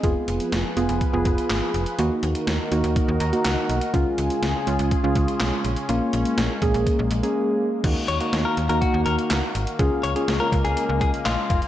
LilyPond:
<<
  \new Staff \with { instrumentName = "Clean electric guitar" } { \time 4/4 \key ees \minor \tempo 4 = 123 r1 | r1 | r1 | r1 |
r8 des''16 r8 bes'16 r16 bes'16 ges'8 bes'16 r4 r16 | r8 des''16 r8 bes'16 r16 aes'8 r16 aes'16 r16 f'8. r16 | }
  \new Staff \with { instrumentName = "Synth keys" } { \time 4/4 \key ees \minor << { r1 | r2 r8 bes''8 ges''4 | r1 | r1 |
r1 | r1 | } \\ { <ces' f' aes'>4 r8 <ces' f' aes'>8 r16 <ces' f' aes'>4~ <ces' f' aes'>16 r8 | <bes ees' ges'>4 r8 <bes ees' ges'>4 r16 <bes ees' ges'>4 r16 | <aes des' f'>4 r8 <aes des' f'>8 r16 <aes des' f'>4~ <aes des' f'>16 r8 | <bes des' f'>4 r8 <bes des' aes'>4 r16 <bes des' aes'>4 r16 |
<bes ees' ges'>8 r16 <bes ees' ges'>8. r16 <bes ees' ges'>4. r8. | <des' f' aes'>8 r16 <des' f' aes'>16 r16 <des' f' bes'>4. r4 r16 | } >> }
  \new Staff \with { instrumentName = "Analog synth pad" } { \time 4/4 \key ees \minor <f f' aes' ces''>1 | <ees ees' ges' bes'>1 | <des des' f' aes'>1 | <aes bes>1 |
<ees bes ges' f''>1 | <des aes bes>1 | }
  \new Staff \with { instrumentName = "FM bass" } { \clef bass \time 4/4 \key ees \minor f,,16 r16 f,,16 r16 f,,16 r16 f,,16 f,,16 r16 f,,16 f,,16 r16 aes,,16 r16 f,,16 r16 | ees,16 r16 ees,16 r16 ees,16 r16 ees,16 ees,16 r16 ees,16 ees,16 r16 des,16 r16 ces,16 r16 | des,16 r16 des,16 r16 des,16 r16 des,16 des,16 r16 des,16 des,16 r16 ces,16 r16 bes,,16 r16 | bes,,16 r16 bes,,16 r16 bes,,16 r16 bes,,16 bes,,16 r16 bes,,16 bes,,16 r4 r16 |
ees,16 r16 ees,16 r16 ees,16 r16 ees,16 ees,16 r16 ees,16 ees,16 r16 des,16 r16 aes,,16 r16 | des,16 r16 des,16 r16 des,16 r16 des,16 des,16 r16 des,16 des,16 r16 bes,,16 r16 f,,16 r16 | }
  \new DrumStaff \with { instrumentName = "Drums" } \drummode { \time 4/4 <hh bd>8 hh16 hh16 <hh sn>8 hh16 hh16 <hh bd>8 <hh bd>16 hh16 <hc hh sn>8 hh16 hh16 | hh8 hh16 hh16 <hh sn>8 hh16 hh16 <hh bd>8 hh16 hh16 <hc hh sn>8 hh16 hh16 | <hh bd>8 hh16 hh16 <hh sn>8 hh16 hh16 <hh bd>8 <hh bd>16 hh16 <hc hh sn>8 hh16 hh16 | hh8 hh16 hh16 <hh sn>8 <hh bd>16 hh16 <hh bd>8 hh16 hh16 r4 |
<cymc hh bd>8 hh16 hh16 <hh sn>8 hh16 hh16 <hh bd>8 hh16 hh16 <hc hh sn>8 hh16 hh16 | <hh bd>8 hh16 hh16 <hh sn>8 <hh bd>16 hh16 hh8 <hh bd>16 hh16 <hc hh sn>8 <hh bd>16 hh16 | }
>>